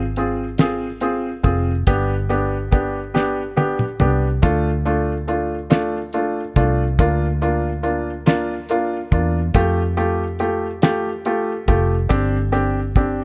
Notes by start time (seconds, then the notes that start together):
Already playing: G#1
0.16 C4 F4 G#4, closed hi-hat
0.58 C4 F4 G#4, snare, closed hi-hat
1.01 C4 F4 G#4, closed hi-hat
1.43 F1 C4 F4 G#4, kick, closed hi-hat
1.87 G1 B3 D4 G4, kick, closed hi-hat
2.29 B3 D4 G4, closed hi-hat
2.71 B3 D4 G4, kick, closed hi-hat
3.14 B3 D4 G4, snare
3.56 B3 D4 G4, high tom
3.79 mid tom
4.00 C2 B3 D4 G4, mid tom
4.42 D2 A3 D4 F4, kick, closed hi-hat
4.85 A3 D4 F4, closed hi-hat
5.27 A3 D4 F4, closed hi-hat
5.70 A3 D4 F4, snare, closed hi-hat
6.13 A3 D4 F4, closed hi-hat
6.56 C2 A3 D4 F4, kick, closed hi-hat
6.99 D2 A#3 D4 F4, kick, closed hi-hat
7.42 A#3 D4 F4, closed hi-hat
7.83 A#3 D4 F4, closed hi-hat
8.26 A#3 D4 F4, snare, closed hi-hat
8.69 A#3 D4 F4, closed hi-hat
9.11 E2 A#3 D4 F4, kick, closed hi-hat
9.54 F2 A3 F4 G4, kick, closed hi-hat
9.97 A3 F4 G4, closed hi-hat
10.39 A3 F4 G4, closed hi-hat
10.82 A3 F4 G4, snare, closed hi-hat
11.25 A3 F4 G4, closed hi-hat
11.68 F1 A3 F4 G4, kick, closed hi-hat
12.09 G1 C4 D4 G4, kick, closed hi-hat
12.52 C4 D4 G4, closed hi-hat
12.95 C4 D4 G4, kick, closed hi-hat